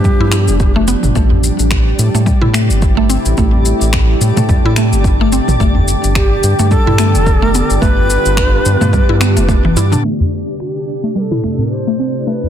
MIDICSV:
0, 0, Header, 1, 9, 480
1, 0, Start_track
1, 0, Key_signature, 0, "minor"
1, 0, Tempo, 555556
1, 1000, Time_signature, 4, 2, 24, 8
1, 10791, End_track
2, 0, Start_track
2, 0, Title_t, "Native American-style wooden flute"
2, 0, Program_c, 0, 77
2, 0, Note_on_c, 0, 67, 87
2, 731, Note_off_c, 0, 67, 0
2, 5322, Note_on_c, 0, 67, 88
2, 5767, Note_off_c, 0, 67, 0
2, 5791, Note_on_c, 0, 69, 104
2, 6721, Note_off_c, 0, 69, 0
2, 6736, Note_on_c, 0, 71, 116
2, 8393, Note_off_c, 0, 71, 0
2, 9161, Note_on_c, 0, 67, 81
2, 9647, Note_on_c, 0, 71, 84
2, 9660, Note_off_c, 0, 67, 0
2, 9685, Note_on_c, 0, 69, 91
2, 9693, Note_off_c, 0, 71, 0
2, 10125, Note_on_c, 0, 72, 93
2, 10138, Note_off_c, 0, 69, 0
2, 10599, Note_on_c, 0, 71, 98
2, 10612, Note_off_c, 0, 72, 0
2, 10791, Note_off_c, 0, 71, 0
2, 10791, End_track
3, 0, Start_track
3, 0, Title_t, "Synth texture"
3, 0, Program_c, 1, 99
3, 995, Note_on_c, 1, 62, 83
3, 995, Note_on_c, 1, 74, 79
3, 8666, Note_off_c, 1, 74, 0
3, 8668, Note_off_c, 1, 62, 0
3, 8677, Note_on_c, 1, 74, 81
3, 8678, Note_on_c, 1, 62, 77
3, 10791, Note_off_c, 1, 62, 0
3, 10791, Note_off_c, 1, 74, 0
3, 10791, End_track
4, 0, Start_track
4, 0, Title_t, "Synth stab"
4, 0, Program_c, 2, 62
4, 10001, Note_on_c, 2, 45, 70
4, 10008, Note_on_c, 2, 60, 60
4, 10017, Note_on_c, 2, 64, 63
4, 10024, Note_on_c, 2, 67, 63
4, 10035, Note_on_c, 2, 69, 71
4, 10791, Note_off_c, 2, 45, 0
4, 10791, Note_off_c, 2, 60, 0
4, 10791, Note_off_c, 2, 64, 0
4, 10791, Note_off_c, 2, 67, 0
4, 10791, Note_off_c, 2, 69, 0
4, 10791, End_track
5, 0, Start_track
5, 0, Title_t, "Ambient pad"
5, 0, Program_c, 3, 92
5, 0, Note_on_c, 3, 47, 75
5, 0, Note_on_c, 3, 53, 92
5, 0, Note_on_c, 3, 55, 88
5, 0, Note_on_c, 3, 62, 94
5, 0, Note_on_c, 3, 67, 95
5, 999, Note_off_c, 3, 47, 0
5, 999, Note_off_c, 3, 53, 0
5, 1006, Note_on_c, 3, 48, 77
5, 1851, Note_on_c, 3, 64, 93
5, 1956, Note_on_c, 3, 57, 85
5, 2551, Note_off_c, 3, 62, 0
5, 4840, Note_off_c, 3, 57, 0
5, 4843, Note_off_c, 3, 48, 0
5, 4843, Note_off_c, 3, 64, 0
5, 4847, Note_on_c, 3, 50, 90
5, 5209, Note_on_c, 3, 59, 72
5, 6360, Note_on_c, 3, 65, 92
5, 8678, Note_off_c, 3, 65, 0
5, 8682, Note_on_c, 3, 48, 85
5, 8683, Note_off_c, 3, 50, 0
5, 9008, Note_on_c, 3, 57, 77
5, 9878, Note_on_c, 3, 64, 72
5, 10218, Note_off_c, 3, 59, 0
5, 10791, Note_off_c, 3, 48, 0
5, 10791, Note_off_c, 3, 55, 0
5, 10791, Note_off_c, 3, 57, 0
5, 10791, Note_off_c, 3, 64, 0
5, 10791, Note_off_c, 3, 67, 0
5, 10791, End_track
6, 0, Start_track
6, 0, Title_t, "Synth pluck"
6, 0, Program_c, 4, 84
6, 43, Note_on_c, 4, 55, 83
6, 170, Note_off_c, 4, 55, 0
6, 178, Note_on_c, 4, 64, 98
6, 269, Note_off_c, 4, 64, 0
6, 279, Note_on_c, 4, 64, 77
6, 402, Note_off_c, 4, 64, 0
6, 655, Note_on_c, 4, 57, 104
6, 754, Note_off_c, 4, 57, 0
6, 758, Note_on_c, 4, 59, 92
6, 881, Note_off_c, 4, 59, 0
6, 997, Note_on_c, 4, 57, 83
6, 1128, Note_off_c, 4, 57, 0
6, 1854, Note_on_c, 4, 57, 77
6, 1954, Note_off_c, 4, 57, 0
6, 1954, Note_on_c, 4, 55, 83
6, 2086, Note_off_c, 4, 55, 0
6, 2087, Note_on_c, 4, 64, 95
6, 2190, Note_off_c, 4, 64, 0
6, 2191, Note_on_c, 4, 57, 75
6, 2558, Note_off_c, 4, 57, 0
6, 2568, Note_on_c, 4, 57, 102
6, 2670, Note_off_c, 4, 57, 0
6, 2674, Note_on_c, 4, 60, 76
6, 2806, Note_off_c, 4, 60, 0
6, 2918, Note_on_c, 4, 57, 84
6, 3048, Note_off_c, 4, 57, 0
6, 3778, Note_on_c, 4, 57, 80
6, 3875, Note_off_c, 4, 57, 0
6, 3881, Note_on_c, 4, 55, 78
6, 4010, Note_off_c, 4, 55, 0
6, 4022, Note_on_c, 4, 64, 103
6, 4118, Note_off_c, 4, 64, 0
6, 4127, Note_on_c, 4, 57, 77
6, 4486, Note_off_c, 4, 57, 0
6, 4502, Note_on_c, 4, 57, 105
6, 4597, Note_off_c, 4, 57, 0
6, 4600, Note_on_c, 4, 60, 76
6, 4729, Note_off_c, 4, 60, 0
6, 4841, Note_on_c, 4, 57, 90
6, 4969, Note_off_c, 4, 57, 0
6, 5696, Note_on_c, 4, 57, 77
6, 5795, Note_off_c, 4, 57, 0
6, 5802, Note_on_c, 4, 55, 84
6, 5930, Note_off_c, 4, 55, 0
6, 5938, Note_on_c, 4, 64, 101
6, 6035, Note_off_c, 4, 64, 0
6, 6042, Note_on_c, 4, 57, 75
6, 6403, Note_off_c, 4, 57, 0
6, 6414, Note_on_c, 4, 57, 99
6, 6513, Note_off_c, 4, 57, 0
6, 6522, Note_on_c, 4, 59, 78
6, 6650, Note_off_c, 4, 59, 0
6, 6756, Note_on_c, 4, 57, 89
6, 6887, Note_off_c, 4, 57, 0
6, 7614, Note_on_c, 4, 57, 78
6, 7713, Note_off_c, 4, 57, 0
6, 7717, Note_on_c, 4, 55, 82
6, 7848, Note_off_c, 4, 55, 0
6, 7856, Note_on_c, 4, 64, 95
6, 7954, Note_off_c, 4, 64, 0
6, 7958, Note_on_c, 4, 59, 78
6, 8088, Note_off_c, 4, 59, 0
6, 8092, Note_on_c, 4, 57, 70
6, 8185, Note_off_c, 4, 57, 0
6, 8195, Note_on_c, 4, 57, 79
6, 8327, Note_off_c, 4, 57, 0
6, 8336, Note_on_c, 4, 52, 81
6, 8434, Note_off_c, 4, 52, 0
6, 8440, Note_on_c, 4, 64, 78
6, 8569, Note_off_c, 4, 64, 0
6, 8574, Note_on_c, 4, 62, 73
6, 8674, Note_off_c, 4, 62, 0
6, 8678, Note_on_c, 4, 57, 79
6, 8808, Note_off_c, 4, 57, 0
6, 9534, Note_on_c, 4, 57, 71
6, 9634, Note_off_c, 4, 57, 0
6, 9637, Note_on_c, 4, 55, 75
6, 9768, Note_off_c, 4, 55, 0
6, 9776, Note_on_c, 4, 64, 96
6, 9875, Note_off_c, 4, 64, 0
6, 9883, Note_on_c, 4, 57, 72
6, 10244, Note_off_c, 4, 57, 0
6, 10259, Note_on_c, 4, 57, 93
6, 10356, Note_off_c, 4, 57, 0
6, 10363, Note_on_c, 4, 60, 67
6, 10491, Note_off_c, 4, 60, 0
6, 10603, Note_on_c, 4, 57, 81
6, 10730, Note_off_c, 4, 57, 0
6, 10791, End_track
7, 0, Start_track
7, 0, Title_t, "Analog synth bass"
7, 0, Program_c, 5, 38
7, 0, Note_on_c, 5, 43, 73
7, 90, Note_off_c, 5, 43, 0
7, 171, Note_on_c, 5, 43, 88
7, 414, Note_on_c, 5, 29, 97
7, 427, Note_off_c, 5, 43, 0
7, 826, Note_off_c, 5, 29, 0
7, 896, Note_on_c, 5, 31, 80
7, 967, Note_off_c, 5, 31, 0
7, 998, Note_on_c, 5, 33, 89
7, 1306, Note_off_c, 5, 33, 0
7, 1375, Note_on_c, 5, 33, 74
7, 1667, Note_off_c, 5, 33, 0
7, 1718, Note_on_c, 5, 45, 97
7, 1812, Note_off_c, 5, 45, 0
7, 1852, Note_on_c, 5, 45, 81
7, 2008, Note_off_c, 5, 45, 0
7, 2091, Note_on_c, 5, 45, 85
7, 2330, Note_on_c, 5, 31, 104
7, 2342, Note_off_c, 5, 45, 0
7, 2744, Note_off_c, 5, 31, 0
7, 2813, Note_on_c, 5, 33, 80
7, 2886, Note_off_c, 5, 33, 0
7, 2918, Note_on_c, 5, 33, 89
7, 3226, Note_off_c, 5, 33, 0
7, 3293, Note_on_c, 5, 33, 76
7, 3586, Note_off_c, 5, 33, 0
7, 3637, Note_on_c, 5, 45, 99
7, 3732, Note_off_c, 5, 45, 0
7, 3774, Note_on_c, 5, 45, 80
7, 3929, Note_off_c, 5, 45, 0
7, 4014, Note_on_c, 5, 45, 90
7, 4253, Note_on_c, 5, 31, 96
7, 4266, Note_off_c, 5, 45, 0
7, 4666, Note_off_c, 5, 31, 0
7, 4734, Note_on_c, 5, 33, 87
7, 4806, Note_off_c, 5, 33, 0
7, 4837, Note_on_c, 5, 31, 92
7, 5146, Note_off_c, 5, 31, 0
7, 5218, Note_on_c, 5, 31, 76
7, 5508, Note_off_c, 5, 31, 0
7, 5560, Note_on_c, 5, 43, 97
7, 5653, Note_off_c, 5, 43, 0
7, 5697, Note_on_c, 5, 43, 76
7, 5850, Note_off_c, 5, 43, 0
7, 5937, Note_on_c, 5, 43, 85
7, 6175, Note_on_c, 5, 29, 102
7, 6188, Note_off_c, 5, 43, 0
7, 6587, Note_off_c, 5, 29, 0
7, 6655, Note_on_c, 5, 31, 84
7, 6726, Note_off_c, 5, 31, 0
7, 6754, Note_on_c, 5, 31, 88
7, 7064, Note_off_c, 5, 31, 0
7, 7134, Note_on_c, 5, 31, 74
7, 7426, Note_off_c, 5, 31, 0
7, 7481, Note_on_c, 5, 43, 106
7, 7573, Note_off_c, 5, 43, 0
7, 7616, Note_on_c, 5, 43, 74
7, 7770, Note_off_c, 5, 43, 0
7, 7855, Note_on_c, 5, 43, 91
7, 8096, Note_on_c, 5, 29, 97
7, 8109, Note_off_c, 5, 43, 0
7, 8430, Note_off_c, 5, 29, 0
7, 8436, Note_on_c, 5, 43, 106
7, 8612, Note_off_c, 5, 43, 0
7, 10791, End_track
8, 0, Start_track
8, 0, Title_t, "Udu"
8, 40, Note_on_c, 9, 64, 87
8, 126, Note_off_c, 9, 64, 0
8, 1131, Note_on_c, 9, 64, 90
8, 1218, Note_off_c, 9, 64, 0
8, 3057, Note_on_c, 9, 64, 82
8, 3143, Note_off_c, 9, 64, 0
8, 3878, Note_on_c, 9, 64, 90
8, 3964, Note_off_c, 9, 64, 0
8, 4979, Note_on_c, 9, 64, 82
8, 5065, Note_off_c, 9, 64, 0
8, 6892, Note_on_c, 9, 64, 90
8, 6979, Note_off_c, 9, 64, 0
8, 7714, Note_on_c, 9, 64, 82
8, 7800, Note_off_c, 9, 64, 0
8, 8814, Note_on_c, 9, 64, 79
8, 8900, Note_off_c, 9, 64, 0
8, 9883, Note_on_c, 9, 64, 69
8, 9970, Note_off_c, 9, 64, 0
8, 10740, Note_on_c, 9, 64, 90
8, 10791, Note_off_c, 9, 64, 0
8, 10791, End_track
9, 0, Start_track
9, 0, Title_t, "Drums"
9, 37, Note_on_c, 9, 36, 94
9, 39, Note_on_c, 9, 82, 32
9, 123, Note_off_c, 9, 36, 0
9, 125, Note_off_c, 9, 82, 0
9, 273, Note_on_c, 9, 26, 65
9, 276, Note_on_c, 9, 82, 73
9, 359, Note_off_c, 9, 26, 0
9, 363, Note_off_c, 9, 82, 0
9, 413, Note_on_c, 9, 82, 42
9, 499, Note_off_c, 9, 82, 0
9, 518, Note_on_c, 9, 36, 108
9, 518, Note_on_c, 9, 82, 32
9, 604, Note_off_c, 9, 36, 0
9, 604, Note_off_c, 9, 82, 0
9, 758, Note_on_c, 9, 82, 73
9, 844, Note_off_c, 9, 82, 0
9, 890, Note_on_c, 9, 45, 71
9, 894, Note_on_c, 9, 82, 43
9, 977, Note_off_c, 9, 45, 0
9, 981, Note_off_c, 9, 82, 0
9, 998, Note_on_c, 9, 36, 95
9, 999, Note_on_c, 9, 82, 32
9, 1085, Note_off_c, 9, 36, 0
9, 1086, Note_off_c, 9, 82, 0
9, 1241, Note_on_c, 9, 82, 75
9, 1328, Note_off_c, 9, 82, 0
9, 1375, Note_on_c, 9, 82, 45
9, 1462, Note_off_c, 9, 82, 0
9, 1474, Note_on_c, 9, 26, 68
9, 1478, Note_on_c, 9, 36, 92
9, 1478, Note_on_c, 9, 82, 32
9, 1561, Note_off_c, 9, 26, 0
9, 1564, Note_off_c, 9, 82, 0
9, 1565, Note_off_c, 9, 36, 0
9, 1720, Note_on_c, 9, 82, 76
9, 1806, Note_off_c, 9, 82, 0
9, 1856, Note_on_c, 9, 82, 42
9, 1943, Note_off_c, 9, 82, 0
9, 1958, Note_on_c, 9, 36, 91
9, 1959, Note_on_c, 9, 82, 32
9, 2045, Note_off_c, 9, 36, 0
9, 2046, Note_off_c, 9, 82, 0
9, 2091, Note_on_c, 9, 45, 61
9, 2177, Note_off_c, 9, 45, 0
9, 2197, Note_on_c, 9, 26, 69
9, 2201, Note_on_c, 9, 82, 72
9, 2283, Note_off_c, 9, 26, 0
9, 2287, Note_off_c, 9, 82, 0
9, 2335, Note_on_c, 9, 82, 45
9, 2421, Note_off_c, 9, 82, 0
9, 2436, Note_on_c, 9, 82, 31
9, 2438, Note_on_c, 9, 36, 106
9, 2523, Note_off_c, 9, 82, 0
9, 2525, Note_off_c, 9, 36, 0
9, 2677, Note_on_c, 9, 82, 76
9, 2763, Note_off_c, 9, 82, 0
9, 2812, Note_on_c, 9, 82, 45
9, 2899, Note_off_c, 9, 82, 0
9, 2916, Note_on_c, 9, 82, 29
9, 2918, Note_on_c, 9, 36, 90
9, 3002, Note_off_c, 9, 82, 0
9, 3005, Note_off_c, 9, 36, 0
9, 3157, Note_on_c, 9, 82, 68
9, 3243, Note_off_c, 9, 82, 0
9, 3295, Note_on_c, 9, 82, 41
9, 3381, Note_off_c, 9, 82, 0
9, 3394, Note_on_c, 9, 26, 73
9, 3398, Note_on_c, 9, 36, 88
9, 3398, Note_on_c, 9, 82, 32
9, 3480, Note_off_c, 9, 26, 0
9, 3484, Note_off_c, 9, 82, 0
9, 3485, Note_off_c, 9, 36, 0
9, 3640, Note_on_c, 9, 82, 72
9, 3727, Note_off_c, 9, 82, 0
9, 3772, Note_on_c, 9, 45, 62
9, 3775, Note_on_c, 9, 82, 45
9, 3858, Note_off_c, 9, 45, 0
9, 3862, Note_off_c, 9, 82, 0
9, 3878, Note_on_c, 9, 36, 96
9, 3880, Note_on_c, 9, 82, 31
9, 3964, Note_off_c, 9, 36, 0
9, 3966, Note_off_c, 9, 82, 0
9, 4115, Note_on_c, 9, 26, 67
9, 4119, Note_on_c, 9, 82, 66
9, 4202, Note_off_c, 9, 26, 0
9, 4205, Note_off_c, 9, 82, 0
9, 4257, Note_on_c, 9, 82, 42
9, 4344, Note_off_c, 9, 82, 0
9, 4357, Note_on_c, 9, 36, 99
9, 4360, Note_on_c, 9, 82, 31
9, 4444, Note_off_c, 9, 36, 0
9, 4446, Note_off_c, 9, 82, 0
9, 4600, Note_on_c, 9, 82, 72
9, 4687, Note_off_c, 9, 82, 0
9, 4736, Note_on_c, 9, 45, 78
9, 4740, Note_on_c, 9, 82, 40
9, 4822, Note_off_c, 9, 45, 0
9, 4826, Note_off_c, 9, 82, 0
9, 4838, Note_on_c, 9, 36, 97
9, 4843, Note_on_c, 9, 82, 30
9, 4925, Note_off_c, 9, 36, 0
9, 4929, Note_off_c, 9, 82, 0
9, 5080, Note_on_c, 9, 82, 73
9, 5166, Note_off_c, 9, 82, 0
9, 5218, Note_on_c, 9, 82, 42
9, 5304, Note_off_c, 9, 82, 0
9, 5316, Note_on_c, 9, 26, 69
9, 5318, Note_on_c, 9, 36, 88
9, 5320, Note_on_c, 9, 82, 30
9, 5403, Note_off_c, 9, 26, 0
9, 5404, Note_off_c, 9, 36, 0
9, 5407, Note_off_c, 9, 82, 0
9, 5559, Note_on_c, 9, 82, 72
9, 5646, Note_off_c, 9, 82, 0
9, 5695, Note_on_c, 9, 82, 42
9, 5782, Note_off_c, 9, 82, 0
9, 5798, Note_on_c, 9, 36, 89
9, 5799, Note_on_c, 9, 82, 30
9, 5884, Note_off_c, 9, 36, 0
9, 5886, Note_off_c, 9, 82, 0
9, 5931, Note_on_c, 9, 45, 61
9, 6018, Note_off_c, 9, 45, 0
9, 6034, Note_on_c, 9, 26, 71
9, 6038, Note_on_c, 9, 82, 66
9, 6120, Note_off_c, 9, 26, 0
9, 6124, Note_off_c, 9, 82, 0
9, 6176, Note_on_c, 9, 82, 43
9, 6263, Note_off_c, 9, 82, 0
9, 6277, Note_on_c, 9, 36, 103
9, 6279, Note_on_c, 9, 82, 30
9, 6364, Note_off_c, 9, 36, 0
9, 6365, Note_off_c, 9, 82, 0
9, 6519, Note_on_c, 9, 82, 69
9, 6605, Note_off_c, 9, 82, 0
9, 6654, Note_on_c, 9, 82, 40
9, 6740, Note_off_c, 9, 82, 0
9, 6756, Note_on_c, 9, 36, 93
9, 6759, Note_on_c, 9, 82, 29
9, 6842, Note_off_c, 9, 36, 0
9, 6846, Note_off_c, 9, 82, 0
9, 6999, Note_on_c, 9, 82, 74
9, 7085, Note_off_c, 9, 82, 0
9, 7133, Note_on_c, 9, 82, 43
9, 7220, Note_off_c, 9, 82, 0
9, 7233, Note_on_c, 9, 26, 80
9, 7235, Note_on_c, 9, 36, 89
9, 7237, Note_on_c, 9, 82, 29
9, 7320, Note_off_c, 9, 26, 0
9, 7322, Note_off_c, 9, 36, 0
9, 7324, Note_off_c, 9, 82, 0
9, 7478, Note_on_c, 9, 82, 75
9, 7564, Note_off_c, 9, 82, 0
9, 7612, Note_on_c, 9, 45, 61
9, 7616, Note_on_c, 9, 82, 40
9, 7698, Note_off_c, 9, 45, 0
9, 7702, Note_off_c, 9, 82, 0
9, 7716, Note_on_c, 9, 36, 96
9, 7718, Note_on_c, 9, 82, 29
9, 7802, Note_off_c, 9, 36, 0
9, 7805, Note_off_c, 9, 82, 0
9, 7955, Note_on_c, 9, 26, 75
9, 7959, Note_on_c, 9, 82, 69
9, 8041, Note_off_c, 9, 26, 0
9, 8045, Note_off_c, 9, 82, 0
9, 8094, Note_on_c, 9, 82, 44
9, 8180, Note_off_c, 9, 82, 0
9, 8195, Note_on_c, 9, 36, 98
9, 8200, Note_on_c, 9, 82, 32
9, 8282, Note_off_c, 9, 36, 0
9, 8286, Note_off_c, 9, 82, 0
9, 8439, Note_on_c, 9, 82, 72
9, 8525, Note_off_c, 9, 82, 0
9, 8570, Note_on_c, 9, 45, 82
9, 8574, Note_on_c, 9, 82, 44
9, 8656, Note_off_c, 9, 45, 0
9, 8660, Note_off_c, 9, 82, 0
9, 8919, Note_on_c, 9, 82, 70
9, 9005, Note_off_c, 9, 82, 0
9, 9056, Note_on_c, 9, 82, 41
9, 9142, Note_off_c, 9, 82, 0
9, 9159, Note_on_c, 9, 26, 69
9, 9245, Note_off_c, 9, 26, 0
9, 9400, Note_on_c, 9, 82, 68
9, 9487, Note_off_c, 9, 82, 0
9, 9536, Note_on_c, 9, 82, 38
9, 9622, Note_off_c, 9, 82, 0
9, 9641, Note_on_c, 9, 82, 28
9, 9727, Note_off_c, 9, 82, 0
9, 9773, Note_on_c, 9, 45, 51
9, 9859, Note_off_c, 9, 45, 0
9, 9880, Note_on_c, 9, 26, 65
9, 9966, Note_off_c, 9, 26, 0
9, 10021, Note_on_c, 9, 82, 37
9, 10107, Note_off_c, 9, 82, 0
9, 10127, Note_on_c, 9, 82, 28
9, 10213, Note_off_c, 9, 82, 0
9, 10363, Note_on_c, 9, 82, 67
9, 10449, Note_off_c, 9, 82, 0
9, 10501, Note_on_c, 9, 82, 38
9, 10588, Note_off_c, 9, 82, 0
9, 10606, Note_on_c, 9, 82, 29
9, 10692, Note_off_c, 9, 82, 0
9, 10791, End_track
0, 0, End_of_file